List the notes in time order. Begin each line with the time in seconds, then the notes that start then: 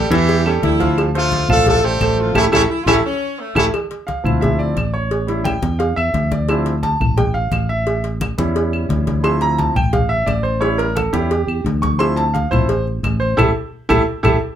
Already playing: G3 G4
0.10 E2 E3 G3 E4 G4 E5, cowbell, high conga
0.29 cowbell, high conga
0.45 G3 C#4 G4 A4, high conga, claves
0.62 D2 E4, cowbell, high conga
0.80 F3 F4 F5, cowbell, high conga
0.98 cowbell, high conga, claves
1.15 F3 A3 F4 A4 C5, cowbell, high conga
1.32 cowbell, high conga
1.48 A1 F3 A3 F4 A4 F5, high conga, low conga, claves
1.67 A3 A4, cowbell, high conga, low conga
1.84 G3 A3 G4 A4 C5, high conga
2.01 A1 A3 A4 C5, cowbell, high conga, claves
2.18 F3 F4, high conga
2.34 A1 A3 C#4 E4 G4 A4, cowbell, high conga, claves
2.52 A1 A3 C#4 E4 G4 A4, cowbell, high conga, claves
2.70 E4
2.83 A1 F4
2.87 A3 C#4 E4 G4 A4, cowbell, high conga, claves
3.05 C#4
3.39 A3
3.55 A1 G3 A3 C#4 E4 G4 A4, cowbell, high conga, claves
3.74 cowbell, high conga, claves
3.91 cowbell, high conga
4.07 F5, cowbell, high conga
4.24 D2 F3 C4 E4, high conga, low conga, claves
4.41 E5, cowbell, high conga, low conga
4.59 D5, high conga
4.76 A1, cowbell, high conga, claves
4.94 C#5, high conga
5.11 cowbell, high conga
5.27 G3 C#4 E4, cowbell, high conga
5.44 G5, cowbell, high conga, claves
5.62 E2, cowbell, high conga
5.79 F5, cowbell, high conga
5.96 E2 E5, high conga, claves
6.14 D2, cowbell, high conga
6.31 D5, cowbell, high conga
6.49 F3 C4 E4, cowbell, high conga, claves
6.66 cowbell, high conga
6.83 A5, cowbell, high conga
7.00 A1, high conga, low conga, claves
7.17 G5, cowbell, high conga, low conga
7.34 F5, high conga
7.51 A1, cowbell, high conga, claves
7.69 E5, high conga
7.87 cowbell, high conga
8.04 cowbell, high conga
8.21 cowbell, high conga, claves
8.38 E2 G3 C#4 E4, cowbell, high conga
8.56 cowbell, high conga
8.73 high conga, claves
8.89 D2, cowbell, high conga
9.07 cowbell, high conga
9.23 F3 C4 E4 C6, cowbell, high conga, claves
9.41 A#5, cowbell, high conga
9.58 A5, cowbell, high conga
9.75 A1 G5, high conga, low conga, claves
9.93 F5, cowbell, high conga, low conga
10.09 E5, high conga
10.26 A1 D5, cowbell, high conga, claves
10.43 C5, high conga
10.60 G3 C#4 E4 C#5, cowbell, high conga
10.78 A#4, cowbell, high conga
10.95 A4, cowbell, high conga, claves
11.13 E2 G3 C#4 E4 G4, cowbell, high conga
11.31 cowbell, high conga
11.47 E2, high conga, claves
11.64 D2, cowbell, high conga
11.82 C#6, cowbell, high conga
11.99 F3 C4 E4 C6, cowbell, high conga, claves
12.16 A5, cowbell, high conga
12.34 F5, cowbell, high conga
12.51 A1 F3 C4 E4 C5, high conga, low conga, claves
12.69 cowbell, high conga
12.87 high conga
13.03 A1, cowbell, high conga, claves
13.20 C5, high conga
13.37 A1 E4 G4 A4, cowbell, low conga, claves
13.89 A1 E4 G4 A4, cowbell, low conga, claves
14.23 A1 E4 G4 A4, cowbell, low conga, claves